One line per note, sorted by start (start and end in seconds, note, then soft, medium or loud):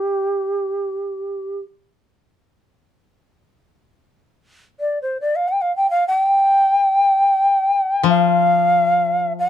0.00 1.57 G4 medium
4.80 4.99 D5 soft
5.02 5.17 C5 soft
5.21 5.37 D5 medium
5.36 5.50 F5 medium
5.48 5.63 G5 medium
5.61 5.75 F5 medium
5.76 5.90 G5 medium
5.90 6.06 F5 medium
6.08 8.03 G5 medium
8.03 9.49 F3 soft
8.09 9.33 F5 medium
9.39 9.49 F#5 medium